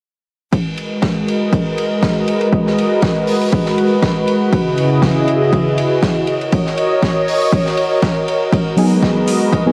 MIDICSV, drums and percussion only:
0, 0, Header, 1, 2, 480
1, 0, Start_track
1, 0, Key_signature, 5, "minor"
1, 0, Tempo, 500000
1, 505, Time_signature, 4, 2, 24, 8
1, 9331, End_track
2, 0, Start_track
2, 0, Title_t, "Drums"
2, 505, Note_on_c, 9, 36, 107
2, 508, Note_on_c, 9, 51, 85
2, 601, Note_off_c, 9, 36, 0
2, 604, Note_off_c, 9, 51, 0
2, 744, Note_on_c, 9, 51, 56
2, 840, Note_off_c, 9, 51, 0
2, 980, Note_on_c, 9, 38, 102
2, 983, Note_on_c, 9, 51, 84
2, 985, Note_on_c, 9, 36, 112
2, 1076, Note_off_c, 9, 38, 0
2, 1079, Note_off_c, 9, 51, 0
2, 1081, Note_off_c, 9, 36, 0
2, 1231, Note_on_c, 9, 51, 60
2, 1327, Note_off_c, 9, 51, 0
2, 1465, Note_on_c, 9, 36, 109
2, 1468, Note_on_c, 9, 51, 84
2, 1561, Note_off_c, 9, 36, 0
2, 1564, Note_off_c, 9, 51, 0
2, 1706, Note_on_c, 9, 51, 61
2, 1802, Note_off_c, 9, 51, 0
2, 1944, Note_on_c, 9, 38, 104
2, 1945, Note_on_c, 9, 36, 112
2, 1945, Note_on_c, 9, 51, 84
2, 2040, Note_off_c, 9, 38, 0
2, 2041, Note_off_c, 9, 36, 0
2, 2041, Note_off_c, 9, 51, 0
2, 2185, Note_on_c, 9, 51, 65
2, 2281, Note_off_c, 9, 51, 0
2, 2312, Note_on_c, 9, 51, 41
2, 2408, Note_off_c, 9, 51, 0
2, 2425, Note_on_c, 9, 36, 111
2, 2426, Note_on_c, 9, 51, 73
2, 2521, Note_off_c, 9, 36, 0
2, 2522, Note_off_c, 9, 51, 0
2, 2561, Note_on_c, 9, 38, 37
2, 2657, Note_off_c, 9, 38, 0
2, 2673, Note_on_c, 9, 51, 61
2, 2769, Note_off_c, 9, 51, 0
2, 2901, Note_on_c, 9, 51, 77
2, 2905, Note_on_c, 9, 36, 115
2, 2911, Note_on_c, 9, 38, 97
2, 2997, Note_off_c, 9, 51, 0
2, 3001, Note_off_c, 9, 36, 0
2, 3007, Note_off_c, 9, 38, 0
2, 3142, Note_on_c, 9, 46, 70
2, 3238, Note_off_c, 9, 46, 0
2, 3277, Note_on_c, 9, 51, 44
2, 3373, Note_off_c, 9, 51, 0
2, 3382, Note_on_c, 9, 51, 79
2, 3385, Note_on_c, 9, 36, 113
2, 3478, Note_off_c, 9, 51, 0
2, 3481, Note_off_c, 9, 36, 0
2, 3511, Note_on_c, 9, 38, 40
2, 3607, Note_off_c, 9, 38, 0
2, 3627, Note_on_c, 9, 51, 62
2, 3723, Note_off_c, 9, 51, 0
2, 3863, Note_on_c, 9, 38, 102
2, 3864, Note_on_c, 9, 51, 74
2, 3865, Note_on_c, 9, 36, 112
2, 3959, Note_off_c, 9, 38, 0
2, 3960, Note_off_c, 9, 51, 0
2, 3961, Note_off_c, 9, 36, 0
2, 4104, Note_on_c, 9, 51, 57
2, 4200, Note_off_c, 9, 51, 0
2, 4345, Note_on_c, 9, 36, 119
2, 4347, Note_on_c, 9, 51, 83
2, 4441, Note_off_c, 9, 36, 0
2, 4443, Note_off_c, 9, 51, 0
2, 4586, Note_on_c, 9, 51, 62
2, 4682, Note_off_c, 9, 51, 0
2, 4820, Note_on_c, 9, 38, 104
2, 4825, Note_on_c, 9, 36, 120
2, 4831, Note_on_c, 9, 51, 79
2, 4916, Note_off_c, 9, 38, 0
2, 4921, Note_off_c, 9, 36, 0
2, 4927, Note_off_c, 9, 51, 0
2, 5066, Note_on_c, 9, 51, 60
2, 5162, Note_off_c, 9, 51, 0
2, 5305, Note_on_c, 9, 36, 115
2, 5309, Note_on_c, 9, 51, 77
2, 5401, Note_off_c, 9, 36, 0
2, 5405, Note_off_c, 9, 51, 0
2, 5547, Note_on_c, 9, 51, 69
2, 5643, Note_off_c, 9, 51, 0
2, 5785, Note_on_c, 9, 36, 118
2, 5787, Note_on_c, 9, 38, 103
2, 5791, Note_on_c, 9, 51, 80
2, 5881, Note_off_c, 9, 36, 0
2, 5883, Note_off_c, 9, 38, 0
2, 5887, Note_off_c, 9, 51, 0
2, 6021, Note_on_c, 9, 51, 56
2, 6117, Note_off_c, 9, 51, 0
2, 6156, Note_on_c, 9, 51, 38
2, 6252, Note_off_c, 9, 51, 0
2, 6263, Note_on_c, 9, 51, 87
2, 6265, Note_on_c, 9, 36, 111
2, 6359, Note_off_c, 9, 51, 0
2, 6361, Note_off_c, 9, 36, 0
2, 6399, Note_on_c, 9, 38, 41
2, 6495, Note_off_c, 9, 38, 0
2, 6505, Note_on_c, 9, 51, 63
2, 6601, Note_off_c, 9, 51, 0
2, 6745, Note_on_c, 9, 36, 112
2, 6747, Note_on_c, 9, 51, 73
2, 6752, Note_on_c, 9, 38, 97
2, 6841, Note_off_c, 9, 36, 0
2, 6843, Note_off_c, 9, 51, 0
2, 6848, Note_off_c, 9, 38, 0
2, 6991, Note_on_c, 9, 46, 79
2, 7087, Note_off_c, 9, 46, 0
2, 7120, Note_on_c, 9, 51, 42
2, 7216, Note_off_c, 9, 51, 0
2, 7225, Note_on_c, 9, 36, 114
2, 7231, Note_on_c, 9, 51, 80
2, 7321, Note_off_c, 9, 36, 0
2, 7327, Note_off_c, 9, 51, 0
2, 7356, Note_on_c, 9, 38, 45
2, 7452, Note_off_c, 9, 38, 0
2, 7463, Note_on_c, 9, 51, 60
2, 7559, Note_off_c, 9, 51, 0
2, 7703, Note_on_c, 9, 51, 79
2, 7705, Note_on_c, 9, 36, 114
2, 7711, Note_on_c, 9, 38, 100
2, 7799, Note_off_c, 9, 51, 0
2, 7801, Note_off_c, 9, 36, 0
2, 7807, Note_off_c, 9, 38, 0
2, 7950, Note_on_c, 9, 51, 63
2, 8046, Note_off_c, 9, 51, 0
2, 8185, Note_on_c, 9, 36, 108
2, 8191, Note_on_c, 9, 51, 84
2, 8281, Note_off_c, 9, 36, 0
2, 8287, Note_off_c, 9, 51, 0
2, 8425, Note_on_c, 9, 46, 96
2, 8427, Note_on_c, 9, 51, 62
2, 8521, Note_off_c, 9, 46, 0
2, 8523, Note_off_c, 9, 51, 0
2, 8665, Note_on_c, 9, 36, 113
2, 8666, Note_on_c, 9, 51, 71
2, 8670, Note_on_c, 9, 38, 99
2, 8761, Note_off_c, 9, 36, 0
2, 8762, Note_off_c, 9, 51, 0
2, 8766, Note_off_c, 9, 38, 0
2, 8905, Note_on_c, 9, 46, 102
2, 8908, Note_on_c, 9, 51, 61
2, 9001, Note_off_c, 9, 46, 0
2, 9004, Note_off_c, 9, 51, 0
2, 9145, Note_on_c, 9, 36, 107
2, 9149, Note_on_c, 9, 51, 79
2, 9241, Note_off_c, 9, 36, 0
2, 9245, Note_off_c, 9, 51, 0
2, 9331, End_track
0, 0, End_of_file